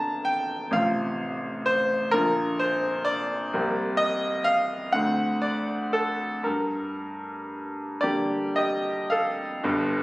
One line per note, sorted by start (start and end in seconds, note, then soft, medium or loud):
0.00 0.71 D3 soft
0.00 0.71 A#3 soft
0.00 0.72 D4 soft
0.00 0.25 G5 medium
0.00 0.78 A5 medium
0.00 0.77 A#5 medium
0.25 0.74 G5 medium
0.71 2.09 A1 medium
0.71 2.11 C3 soft
0.71 1.68 F5 medium
0.75 2.11 C4 soft
0.75 2.12 F4 soft
1.66 2.14 C5 medium
2.11 3.50 A#1 medium
2.11 3.50 D3 soft
2.11 3.51 A#3 soft
2.11 3.50 F4 soft
2.11 2.60 A#4 medium
2.60 3.07 C5 medium
3.05 3.99 D5 medium
3.53 4.91 C2 medium
3.53 4.91 G3 soft
3.53 4.91 A#3 soft
3.53 4.91 C4 soft
3.97 4.46 D#5 medium
4.44 4.94 F5 medium
4.93 6.41 D2 medium
4.93 6.41 D3 soft
4.93 6.42 A3 soft
4.93 6.42 C4 soft
4.93 5.43 F#5 medium
5.42 5.93 D5 medium
5.93 6.45 A4 medium
6.44 7.98 G2 soft
6.44 8.02 A#4 medium
8.01 9.60 D3 soft
8.01 9.60 G3 soft
8.01 9.60 A#3 soft
8.01 8.53 G4 medium
8.01 8.56 D5 medium
8.56 9.08 G4 medium
8.56 9.11 D#5 medium
9.10 10.03 A4 medium
9.10 10.03 F5 medium
9.64 10.03 G1 medium
9.64 10.03 G2 medium